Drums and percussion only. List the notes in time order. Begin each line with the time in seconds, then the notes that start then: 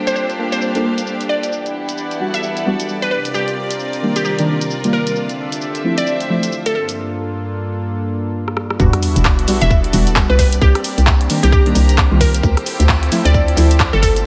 0.07 closed hi-hat, shaker
0.16 shaker
0.30 closed hi-hat, shaker
0.52 closed hi-hat, shaker
0.61 shaker
0.75 closed hi-hat, shaker
0.98 closed hi-hat, shaker
1.07 shaker
1.21 closed hi-hat, shaker
1.43 closed hi-hat, shaker
1.52 shaker
1.66 closed hi-hat, shaker
1.89 closed hi-hat, shaker
1.98 shaker
2.11 closed hi-hat, shaker
2.34 closed hi-hat, shaker
2.43 shaker
2.57 closed hi-hat, shaker
2.80 closed hi-hat, shaker
2.89 shaker
3.02 closed hi-hat, shaker
3.25 closed hi-hat, shaker
3.34 shaker
3.48 closed hi-hat, shaker
3.71 closed hi-hat, shaker
3.80 shaker
3.93 closed hi-hat, shaker
4.16 closed hi-hat, shaker
4.25 shaker
4.39 closed hi-hat, shaker
4.61 closed hi-hat, shaker
4.70 shaker
4.84 closed hi-hat, shaker
5.07 closed hi-hat, shaker
5.16 shaker
5.29 closed hi-hat, shaker
5.52 closed hi-hat, shaker
5.61 shaker
5.75 closed hi-hat, shaker
5.98 closed hi-hat, shaker
6.07 shaker
6.20 closed hi-hat, shaker
6.43 closed hi-hat, shaker
6.52 shaker
6.66 closed hi-hat, shaker
6.89 closed hi-hat, shaker
8.48 cross-stick
8.57 cross-stick
8.70 cross-stick
8.80 kick, shaker
8.93 cross-stick, closed hi-hat
9.03 open hi-hat, shaker
9.16 closed hi-hat, shaker
9.25 kick, clap, shaker
9.39 closed hi-hat
9.48 open hi-hat, shaker
9.61 closed hi-hat, shaker
9.71 kick, shaker
9.84 closed hi-hat
9.93 open hi-hat, shaker
10.07 closed hi-hat, shaker
10.16 kick, cross-stick, clap, shaker
10.39 kick, open hi-hat, shaker
10.53 closed hi-hat, shaker
10.62 kick, shaker
10.75 cross-stick, closed hi-hat
10.84 open hi-hat, shaker
10.98 closed hi-hat, shaker
11.07 kick, clap, shaker
11.21 closed hi-hat
11.30 open hi-hat, shaker
11.43 closed hi-hat, shaker
11.52 kick, shaker
11.66 closed hi-hat
11.75 open hi-hat, shaker
11.89 closed hi-hat, shaker
11.98 kick, cross-stick, clap, shaker
12.21 kick, open hi-hat, shaker
12.35 closed hi-hat, shaker
12.43 kick, shaker
12.57 cross-stick, closed hi-hat
12.66 open hi-hat, shaker
12.80 closed hi-hat, shaker
12.89 kick, clap, shaker
13.03 closed hi-hat
13.12 open hi-hat, shaker
13.26 closed hi-hat, shaker
13.34 kick, shaker
13.48 closed hi-hat
13.57 open hi-hat, shaker
13.71 closed hi-hat, shaker
13.80 kick, cross-stick, clap, shaker
14.03 kick, open hi-hat, shaker
14.16 closed hi-hat, shaker